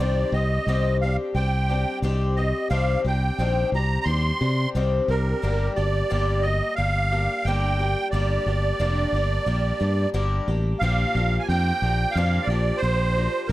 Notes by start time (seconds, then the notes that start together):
0.00 C2 C3 D#3 G3 C4 D4 G4 D5
0.32 C2 G3 C4 G4 D#5
0.67 C2 C3 D#3 G3 C4 G4
1.01 G3 C4 D4 G4 F5
1.35 C2 G3 C4 D4 G4 G5
1.69 G3 C4 D4 G4
2.02 C2 C3 D#3 G3 C4 D4 G4
2.36 G3 C4 G4 D#5
2.70 C2 C3 D#3 G3 C4 D4 G4 F5
3.04 C2 G3 C4 D4 G4 G5
3.38 A#1 C3 D#3 G3 C4 D4 G4
3.72 C2 G3 C4 D4 G4 A#5
4.01 A#5 C6
4.06 D#2 G3 C4 D4
4.10 G4
4.41 C3 G3 C4 D4 G4
4.75 C2 C3 D#3 G3 C4 D4 G4
5.08 C2 G3 C4 D4 G4 A#4
5.42 G1 G2 D3 G3 A#3 D4 G4
5.75 G1 G3 A#3 D4 G4 D5
6.10 G1 G2 D3 G3 A#3 D4 G4
6.42 G4 D#5
6.47 G3 A#3
6.76 G1 G3 A#3 D4 G4 F5
7.12 G3 A#3 D4 G4
7.45 G1 G2 D3 G3 A#3 D4 G4 G5
7.80 G3 A#3 D4 G4
8.11 G1 G2 D3 G3 A#3 D4 G4 D5
8.46 G1 G3 A#3 D4 G4
8.79 F1 G2 D3 G3 A#3 D4 G4
9.12 G1 A#3 D4 G4
9.17 G3
9.46 A#1 G3 A#3 D4 G4
9.79 G2 G3 A#3 D4 G4
10.14 G1 G2 D3 G3 A#3 D4 G4
10.48 A1 G3 A#3 D4 G4
10.79 A#1 A#2 D3 F3 A#3 D4 F5
10.83 G4
11.15 A#1 F3 A#3 D4 G4
11.39 G#5
11.48 F2 F3 A#3 D4 G4 G5
11.82 A#1 F3 A#3 D4 G4
12.11 F5
12.15 F2 A#2 D3 F3 A#3 D4 G4
12.43 D5
12.47 A#1 D4 G4
12.51 F3 A#3
12.77 C5
12.82 A#1 F3 A#3 D4 G4
13.16 F3 A#3 D4 G4
13.48 A#4